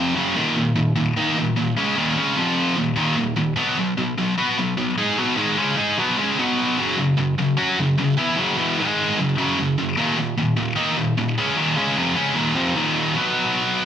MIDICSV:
0, 0, Header, 1, 2, 480
1, 0, Start_track
1, 0, Key_signature, -6, "minor"
1, 0, Tempo, 401070
1, 424, Time_signature, 4, 2, 24, 8
1, 10024, Tempo, 397878
1, 16628, End_track
2, 0, Start_track
2, 0, Title_t, "Distorted electric guitar"
2, 0, Program_c, 0, 30
2, 0, Note_on_c, 0, 41, 93
2, 0, Note_on_c, 0, 48, 97
2, 0, Note_on_c, 0, 53, 105
2, 177, Note_off_c, 0, 41, 0
2, 177, Note_off_c, 0, 48, 0
2, 182, Note_off_c, 0, 53, 0
2, 185, Note_on_c, 0, 42, 89
2, 185, Note_on_c, 0, 49, 97
2, 187, Note_on_c, 0, 54, 98
2, 417, Note_off_c, 0, 42, 0
2, 417, Note_off_c, 0, 49, 0
2, 418, Note_off_c, 0, 54, 0
2, 431, Note_on_c, 0, 39, 81
2, 432, Note_on_c, 0, 46, 100
2, 433, Note_on_c, 0, 51, 106
2, 654, Note_off_c, 0, 39, 0
2, 661, Note_off_c, 0, 46, 0
2, 661, Note_off_c, 0, 51, 0
2, 668, Note_on_c, 0, 39, 65
2, 675, Note_on_c, 0, 46, 71
2, 858, Note_off_c, 0, 39, 0
2, 861, Note_off_c, 0, 46, 0
2, 905, Note_on_c, 0, 39, 61
2, 907, Note_on_c, 0, 46, 62
2, 1097, Note_off_c, 0, 39, 0
2, 1098, Note_off_c, 0, 46, 0
2, 1144, Note_on_c, 0, 39, 67
2, 1150, Note_on_c, 0, 46, 75
2, 1336, Note_off_c, 0, 39, 0
2, 1339, Note_off_c, 0, 46, 0
2, 1393, Note_on_c, 0, 51, 99
2, 1399, Note_on_c, 0, 58, 99
2, 1404, Note_on_c, 0, 63, 104
2, 1622, Note_off_c, 0, 51, 0
2, 1624, Note_off_c, 0, 58, 0
2, 1627, Note_off_c, 0, 63, 0
2, 1637, Note_on_c, 0, 39, 60
2, 1651, Note_on_c, 0, 46, 75
2, 1823, Note_off_c, 0, 39, 0
2, 1830, Note_off_c, 0, 46, 0
2, 1871, Note_on_c, 0, 46, 70
2, 1876, Note_on_c, 0, 39, 62
2, 2060, Note_off_c, 0, 46, 0
2, 2063, Note_off_c, 0, 39, 0
2, 2112, Note_on_c, 0, 49, 86
2, 2125, Note_on_c, 0, 56, 93
2, 2131, Note_on_c, 0, 61, 87
2, 2342, Note_off_c, 0, 49, 0
2, 2348, Note_off_c, 0, 56, 0
2, 2351, Note_off_c, 0, 61, 0
2, 2353, Note_on_c, 0, 39, 88
2, 2358, Note_on_c, 0, 46, 100
2, 2358, Note_on_c, 0, 51, 104
2, 2583, Note_off_c, 0, 39, 0
2, 2585, Note_off_c, 0, 46, 0
2, 2585, Note_off_c, 0, 51, 0
2, 2595, Note_on_c, 0, 49, 88
2, 2602, Note_on_c, 0, 56, 83
2, 2610, Note_on_c, 0, 61, 102
2, 2824, Note_off_c, 0, 49, 0
2, 2827, Note_off_c, 0, 56, 0
2, 2831, Note_off_c, 0, 61, 0
2, 2834, Note_on_c, 0, 48, 89
2, 2835, Note_on_c, 0, 41, 84
2, 2839, Note_on_c, 0, 53, 97
2, 3297, Note_off_c, 0, 41, 0
2, 3302, Note_on_c, 0, 39, 66
2, 3304, Note_off_c, 0, 48, 0
2, 3306, Note_off_c, 0, 53, 0
2, 3317, Note_on_c, 0, 46, 71
2, 3497, Note_off_c, 0, 39, 0
2, 3504, Note_off_c, 0, 46, 0
2, 3540, Note_on_c, 0, 39, 90
2, 3546, Note_on_c, 0, 46, 89
2, 3549, Note_on_c, 0, 51, 101
2, 3768, Note_off_c, 0, 39, 0
2, 3780, Note_off_c, 0, 46, 0
2, 3782, Note_off_c, 0, 51, 0
2, 3783, Note_on_c, 0, 39, 68
2, 3799, Note_on_c, 0, 46, 66
2, 3978, Note_off_c, 0, 39, 0
2, 3986, Note_off_c, 0, 46, 0
2, 4029, Note_on_c, 0, 39, 61
2, 4032, Note_on_c, 0, 46, 60
2, 4221, Note_off_c, 0, 39, 0
2, 4222, Note_off_c, 0, 46, 0
2, 4261, Note_on_c, 0, 47, 97
2, 4275, Note_on_c, 0, 54, 97
2, 4279, Note_on_c, 0, 59, 110
2, 4493, Note_off_c, 0, 47, 0
2, 4496, Note_off_c, 0, 54, 0
2, 4507, Note_off_c, 0, 59, 0
2, 4508, Note_on_c, 0, 47, 64
2, 4510, Note_on_c, 0, 54, 72
2, 4701, Note_off_c, 0, 47, 0
2, 4702, Note_off_c, 0, 54, 0
2, 4754, Note_on_c, 0, 47, 60
2, 4757, Note_on_c, 0, 54, 62
2, 4944, Note_off_c, 0, 47, 0
2, 4946, Note_off_c, 0, 54, 0
2, 4999, Note_on_c, 0, 47, 63
2, 5005, Note_on_c, 0, 54, 72
2, 5187, Note_off_c, 0, 47, 0
2, 5190, Note_off_c, 0, 54, 0
2, 5238, Note_on_c, 0, 59, 88
2, 5241, Note_on_c, 0, 66, 100
2, 5246, Note_on_c, 0, 71, 88
2, 5467, Note_off_c, 0, 59, 0
2, 5469, Note_off_c, 0, 66, 0
2, 5471, Note_off_c, 0, 71, 0
2, 5484, Note_on_c, 0, 47, 65
2, 5486, Note_on_c, 0, 54, 70
2, 5669, Note_off_c, 0, 47, 0
2, 5670, Note_off_c, 0, 54, 0
2, 5711, Note_on_c, 0, 47, 60
2, 5711, Note_on_c, 0, 54, 72
2, 5903, Note_off_c, 0, 47, 0
2, 5903, Note_off_c, 0, 54, 0
2, 5957, Note_on_c, 0, 56, 77
2, 5959, Note_on_c, 0, 63, 79
2, 5965, Note_on_c, 0, 68, 101
2, 6187, Note_off_c, 0, 56, 0
2, 6188, Note_off_c, 0, 63, 0
2, 6191, Note_off_c, 0, 68, 0
2, 6199, Note_on_c, 0, 54, 105
2, 6200, Note_on_c, 0, 47, 97
2, 6218, Note_on_c, 0, 59, 110
2, 6418, Note_off_c, 0, 47, 0
2, 6423, Note_on_c, 0, 44, 86
2, 6424, Note_off_c, 0, 59, 0
2, 6427, Note_off_c, 0, 54, 0
2, 6429, Note_on_c, 0, 56, 100
2, 6431, Note_on_c, 0, 51, 94
2, 6660, Note_off_c, 0, 44, 0
2, 6663, Note_off_c, 0, 56, 0
2, 6664, Note_off_c, 0, 51, 0
2, 6678, Note_on_c, 0, 49, 88
2, 6684, Note_on_c, 0, 56, 89
2, 6685, Note_on_c, 0, 61, 91
2, 6886, Note_off_c, 0, 56, 0
2, 6901, Note_on_c, 0, 56, 78
2, 6907, Note_off_c, 0, 49, 0
2, 6909, Note_off_c, 0, 61, 0
2, 6914, Note_on_c, 0, 63, 95
2, 6920, Note_on_c, 0, 68, 104
2, 7139, Note_off_c, 0, 56, 0
2, 7145, Note_off_c, 0, 63, 0
2, 7148, Note_off_c, 0, 68, 0
2, 7157, Note_on_c, 0, 47, 93
2, 7164, Note_on_c, 0, 54, 91
2, 7173, Note_on_c, 0, 59, 92
2, 7387, Note_off_c, 0, 47, 0
2, 7390, Note_off_c, 0, 54, 0
2, 7392, Note_on_c, 0, 49, 85
2, 7395, Note_off_c, 0, 59, 0
2, 7401, Note_on_c, 0, 61, 103
2, 7402, Note_on_c, 0, 56, 103
2, 7624, Note_off_c, 0, 49, 0
2, 7629, Note_off_c, 0, 56, 0
2, 7629, Note_off_c, 0, 61, 0
2, 7638, Note_on_c, 0, 47, 90
2, 7649, Note_on_c, 0, 54, 92
2, 7652, Note_on_c, 0, 59, 92
2, 8107, Note_off_c, 0, 47, 0
2, 8112, Note_off_c, 0, 54, 0
2, 8114, Note_off_c, 0, 59, 0
2, 8116, Note_on_c, 0, 42, 102
2, 8119, Note_on_c, 0, 49, 97
2, 8131, Note_on_c, 0, 54, 105
2, 8327, Note_off_c, 0, 42, 0
2, 8336, Note_off_c, 0, 49, 0
2, 8342, Note_on_c, 0, 42, 67
2, 8350, Note_on_c, 0, 49, 70
2, 8353, Note_off_c, 0, 54, 0
2, 8537, Note_off_c, 0, 42, 0
2, 8542, Note_off_c, 0, 49, 0
2, 8590, Note_on_c, 0, 42, 63
2, 8593, Note_on_c, 0, 49, 57
2, 8781, Note_off_c, 0, 42, 0
2, 8783, Note_off_c, 0, 49, 0
2, 8841, Note_on_c, 0, 42, 59
2, 8844, Note_on_c, 0, 49, 70
2, 9027, Note_off_c, 0, 42, 0
2, 9028, Note_off_c, 0, 49, 0
2, 9062, Note_on_c, 0, 54, 81
2, 9066, Note_on_c, 0, 61, 94
2, 9078, Note_on_c, 0, 66, 98
2, 9297, Note_off_c, 0, 54, 0
2, 9299, Note_off_c, 0, 61, 0
2, 9305, Note_off_c, 0, 66, 0
2, 9327, Note_on_c, 0, 42, 59
2, 9331, Note_on_c, 0, 49, 75
2, 9509, Note_off_c, 0, 42, 0
2, 9511, Note_off_c, 0, 49, 0
2, 9553, Note_on_c, 0, 42, 58
2, 9565, Note_on_c, 0, 49, 74
2, 9741, Note_off_c, 0, 42, 0
2, 9747, Note_off_c, 0, 49, 0
2, 9787, Note_on_c, 0, 52, 83
2, 9788, Note_on_c, 0, 59, 82
2, 9796, Note_on_c, 0, 64, 91
2, 10016, Note_off_c, 0, 52, 0
2, 10019, Note_off_c, 0, 59, 0
2, 10019, Note_on_c, 0, 42, 102
2, 10020, Note_on_c, 0, 49, 97
2, 10023, Note_off_c, 0, 64, 0
2, 10027, Note_on_c, 0, 54, 103
2, 10254, Note_off_c, 0, 42, 0
2, 10257, Note_off_c, 0, 49, 0
2, 10258, Note_on_c, 0, 40, 94
2, 10260, Note_off_c, 0, 54, 0
2, 10265, Note_on_c, 0, 47, 94
2, 10274, Note_on_c, 0, 52, 101
2, 10496, Note_off_c, 0, 40, 0
2, 10522, Note_off_c, 0, 47, 0
2, 10522, Note_on_c, 0, 44, 92
2, 10534, Note_off_c, 0, 52, 0
2, 10534, Note_on_c, 0, 51, 91
2, 10538, Note_on_c, 0, 56, 101
2, 10989, Note_off_c, 0, 44, 0
2, 10996, Note_off_c, 0, 51, 0
2, 10997, Note_off_c, 0, 56, 0
2, 11008, Note_on_c, 0, 49, 70
2, 11010, Note_on_c, 0, 42, 64
2, 11191, Note_off_c, 0, 49, 0
2, 11192, Note_off_c, 0, 42, 0
2, 11235, Note_on_c, 0, 42, 92
2, 11243, Note_on_c, 0, 49, 89
2, 11246, Note_on_c, 0, 54, 100
2, 11466, Note_off_c, 0, 42, 0
2, 11470, Note_off_c, 0, 49, 0
2, 11471, Note_off_c, 0, 54, 0
2, 11487, Note_on_c, 0, 42, 63
2, 11493, Note_on_c, 0, 49, 74
2, 11672, Note_off_c, 0, 42, 0
2, 11674, Note_off_c, 0, 49, 0
2, 11720, Note_on_c, 0, 42, 62
2, 11724, Note_on_c, 0, 49, 70
2, 11908, Note_off_c, 0, 42, 0
2, 11910, Note_off_c, 0, 49, 0
2, 11954, Note_on_c, 0, 39, 97
2, 11964, Note_on_c, 0, 46, 97
2, 11967, Note_on_c, 0, 51, 96
2, 12177, Note_off_c, 0, 39, 0
2, 12191, Note_off_c, 0, 46, 0
2, 12192, Note_on_c, 0, 39, 65
2, 12193, Note_off_c, 0, 51, 0
2, 12204, Note_on_c, 0, 46, 73
2, 12385, Note_off_c, 0, 39, 0
2, 12391, Note_off_c, 0, 46, 0
2, 12438, Note_on_c, 0, 39, 61
2, 12444, Note_on_c, 0, 46, 73
2, 12628, Note_off_c, 0, 39, 0
2, 12631, Note_off_c, 0, 46, 0
2, 12665, Note_on_c, 0, 39, 63
2, 12665, Note_on_c, 0, 46, 63
2, 12862, Note_off_c, 0, 39, 0
2, 12862, Note_off_c, 0, 46, 0
2, 12896, Note_on_c, 0, 51, 87
2, 12898, Note_on_c, 0, 58, 92
2, 12902, Note_on_c, 0, 63, 97
2, 13138, Note_off_c, 0, 51, 0
2, 13139, Note_off_c, 0, 58, 0
2, 13141, Note_off_c, 0, 63, 0
2, 13152, Note_on_c, 0, 39, 64
2, 13158, Note_on_c, 0, 46, 67
2, 13345, Note_off_c, 0, 39, 0
2, 13348, Note_off_c, 0, 46, 0
2, 13404, Note_on_c, 0, 39, 56
2, 13413, Note_on_c, 0, 46, 65
2, 13591, Note_off_c, 0, 39, 0
2, 13596, Note_off_c, 0, 46, 0
2, 13647, Note_on_c, 0, 49, 75
2, 13653, Note_on_c, 0, 56, 82
2, 13662, Note_on_c, 0, 61, 90
2, 13868, Note_on_c, 0, 39, 85
2, 13871, Note_off_c, 0, 49, 0
2, 13876, Note_on_c, 0, 46, 105
2, 13877, Note_off_c, 0, 56, 0
2, 13881, Note_off_c, 0, 61, 0
2, 13882, Note_on_c, 0, 51, 108
2, 14104, Note_off_c, 0, 39, 0
2, 14104, Note_off_c, 0, 46, 0
2, 14109, Note_on_c, 0, 49, 94
2, 14111, Note_off_c, 0, 51, 0
2, 14118, Note_on_c, 0, 56, 91
2, 14128, Note_on_c, 0, 61, 97
2, 14344, Note_off_c, 0, 49, 0
2, 14349, Note_off_c, 0, 56, 0
2, 14353, Note_on_c, 0, 41, 85
2, 14354, Note_off_c, 0, 61, 0
2, 14356, Note_on_c, 0, 48, 85
2, 14366, Note_on_c, 0, 53, 101
2, 14579, Note_off_c, 0, 48, 0
2, 14584, Note_on_c, 0, 49, 89
2, 14586, Note_off_c, 0, 41, 0
2, 14586, Note_off_c, 0, 53, 0
2, 14591, Note_on_c, 0, 56, 88
2, 14599, Note_on_c, 0, 61, 89
2, 14807, Note_on_c, 0, 39, 91
2, 14811, Note_off_c, 0, 49, 0
2, 14816, Note_off_c, 0, 56, 0
2, 14816, Note_on_c, 0, 46, 93
2, 14821, Note_on_c, 0, 51, 91
2, 14829, Note_off_c, 0, 61, 0
2, 15053, Note_off_c, 0, 39, 0
2, 15057, Note_off_c, 0, 46, 0
2, 15060, Note_off_c, 0, 51, 0
2, 15063, Note_on_c, 0, 41, 92
2, 15063, Note_on_c, 0, 48, 90
2, 15066, Note_on_c, 0, 53, 94
2, 15296, Note_off_c, 0, 41, 0
2, 15300, Note_off_c, 0, 48, 0
2, 15300, Note_on_c, 0, 39, 101
2, 15302, Note_off_c, 0, 53, 0
2, 15308, Note_on_c, 0, 51, 91
2, 15312, Note_on_c, 0, 46, 98
2, 15777, Note_off_c, 0, 46, 0
2, 15778, Note_off_c, 0, 39, 0
2, 15781, Note_off_c, 0, 51, 0
2, 15781, Note_on_c, 0, 47, 95
2, 15798, Note_on_c, 0, 54, 90
2, 15813, Note_on_c, 0, 59, 106
2, 16628, Note_off_c, 0, 47, 0
2, 16628, Note_off_c, 0, 54, 0
2, 16628, Note_off_c, 0, 59, 0
2, 16628, End_track
0, 0, End_of_file